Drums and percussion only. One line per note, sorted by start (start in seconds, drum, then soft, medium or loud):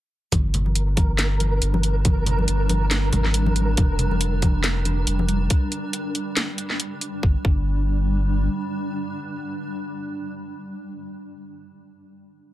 0.32 kick loud
0.32 closed hi-hat medium
0.32 high conga medium
0.32 low conga loud
0.54 closed hi-hat medium
0.54 low conga medium
0.66 high conga medium
0.75 closed hi-hat medium
0.97 kick loud
0.97 closed hi-hat medium
0.97 high conga medium
1.19 snare loud
1.19 closed hi-hat medium
1.40 closed hi-hat medium
1.40 high conga medium
1.62 closed hi-hat medium
1.74 high conga loud
1.83 closed hi-hat medium
2.05 kick loud
2.05 closed hi-hat medium
2.05 high conga loud
2.05 low conga medium
2.26 closed hi-hat medium
2.26 low conga medium
2.39 high conga medium
2.48 closed hi-hat medium
2.69 closed hi-hat medium
2.69 high conga loud
2.91 snare loud
2.91 closed hi-hat medium
3.13 closed hi-hat medium
3.13 high conga medium
3.13 low conga medium
3.25 snare soft
3.34 closed hi-hat medium
3.46 high conga loud
3.56 closed hi-hat medium
3.77 kick loud
3.77 closed hi-hat medium
3.77 high conga loud
3.77 low conga medium
3.99 closed hi-hat medium
3.99 low conga medium
4.11 high conga medium
4.21 closed hi-hat medium
4.42 kick loud
4.42 closed hi-hat medium
4.42 high conga loud
4.64 snare loud
4.64 closed hi-hat medium
4.85 closed hi-hat medium
4.85 high conga medium
5.07 closed hi-hat medium
5.19 high conga loud
5.29 closed hi-hat medium
5.50 kick loud
5.50 closed hi-hat medium
5.72 closed hi-hat medium
5.93 closed hi-hat medium
6.15 closed hi-hat medium
6.37 snare loud
6.37 closed hi-hat medium
6.58 closed hi-hat medium
6.70 snare soft
6.80 closed hi-hat medium
7.01 closed hi-hat medium
7.23 kick loud
7.45 kick loud